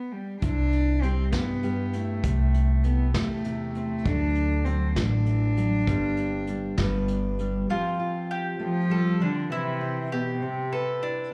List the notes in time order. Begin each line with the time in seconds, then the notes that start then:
Already playing: B3
0.12 G3
0.41 C2 C3 D4 E4, kick, closed hi-hat
0.73 closed hi-hat
1.02 G3 C4 G4, closed hi-hat
1.32 G2 B3 G4, kick, snare, closed hi-hat
1.63 G2 G4, closed hi-hat
1.93 A3 E4, closed hi-hat
2.23 C2 C3, kick, closed hi-hat
2.54 closed hi-hat
2.84 A3 B3 E4, closed hi-hat
3.14 E2 A3 G4, kick, snare, closed hi-hat
3.44 C3 E4, closed hi-hat
3.75 A3 C4, closed hi-hat
4.05 D2 D3 F#3 D4 F#4 A4, kick, closed hi-hat
4.35 closed hi-hat
4.65 F#3 C4 F#4, closed hi-hat
4.96 A1 D3 D4, kick, snare, closed hi-hat
5.26 E3, closed hi-hat
5.57 F#3, closed hi-hat
5.87 G1 G2 G3 C4 D4 G4, kick, closed hi-hat
6.17 closed hi-hat
6.47 G3 D4, closed hi-hat
6.78 G1 G2 G3 B3 D4 B4, kick, snare, closed hi-hat
7.08 closed hi-hat
7.39 G3 D4, closed hi-hat
7.69 F3 C4 F4 G4
8.00 F4
8.31 G4
8.59 A3
8.64 F3
8.90 G3 A4
9.20 D3 F3 D4
9.50 C3 E3 E4
9.81 C4
10.12 B2 G4
10.42 C3, muted steel-string acoustic guitar stroke
10.72 A4 B4
11.03 D4 E4